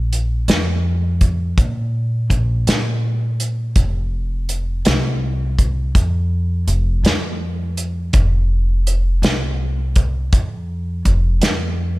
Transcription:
Already playing: A#1
0.13 closed hi-hat
0.48 F2, snare, closed hi-hat
1.21 kick, closed hi-hat
1.58 A#2, kick, closed hi-hat
2.30 A#1, kick, closed hi-hat
2.67 A#2, snare, closed hi-hat
3.40 closed hi-hat
3.76 F1, kick, closed hi-hat
4.49 closed hi-hat
4.85 C2, snare, closed hi-hat
5.59 kick, closed hi-hat
5.95 F2, kick, closed hi-hat
6.67 F1, closed hi-hat
7.03 F2, snare, closed hi-hat
7.77 closed hi-hat
8.13 F1, kick, closed hi-hat
8.87 closed hi-hat
9.22 C2, snare, closed hi-hat
9.96 kick, closed hi-hat
10.32 F2, kick, closed hi-hat
11.05 F1, kick, closed hi-hat
11.41 F2, snare, closed hi-hat

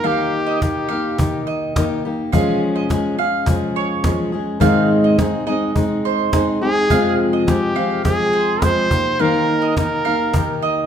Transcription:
0.03 D#3 A#3 D#4 G4 F5
0.47 D#5
0.61 D#3 A#3 D#4 G4, cajon bass, cajon slap
0.89 A#3 D#4 G4 F5
1.18 D#3 A#3 D#4 G4, cajon bass, cajon slap
1.47 D#5
1.76 D#3 A#3 D#4 G4, cajon bass, cajon slap
2.05 A#3 D#4 G4
2.32 F3 G#3 C#4 G#4 F5, cajon bass
2.76 D#5
2.89 F3 G#3 C#4 G#4, cajon bass, cajon slap
3.18 G#3 C#4 G#4 F5
3.46 F3 G#3 C#4 G#4, cajon bass, cajon slap
3.76 C#5
4.04 F3 G#3 C#4 G#4, cajon bass, cajon slap
4.32 G#3 C#4 G#4
4.60 G#2 D#3 G#3 C4 D#4 G#4 F5, cajon bass
5.04 D#5
5.18 G#3 C4 D#4 G#4, cajon bass, cajon slap
5.46 G#3 C4 D#4 G#4 D#5
5.75 G#3 C4 D#4 G#4, cajon bass
6.05 C5
6.32 G#3 C4 D#4 G#4, cajon bass, cajon slap
6.61 G#3 C4 D#4 G#4
6.90 F2 C3 F3 G#3 C4 G#4 F5, cajon bass
7.33 D#5
7.47 F3 G#3 C4 G4 G#4, cajon bass, cajon slap
7.75 F3 G#3 C4 G#4 F5
8.03 F3 G#3 C4 G#4, cajon bass, cajon slap
8.33 C5
8.61 F3 G#3 C4 G#4 C5, cajon bass, cajon slap
8.90 A#3 D#4 G4, cajon bass
9.19 D#3 A#3 D#4 G4 A#4 F5
9.62 D#5
9.77 D#3 A#3 D#4 G4 A#4, cajon bass, cajon slap
10.05 A#3 D#4 G4 F5
10.33 D#3 A#3 D#4 G4, cajon bass, cajon slap
10.62 D#5

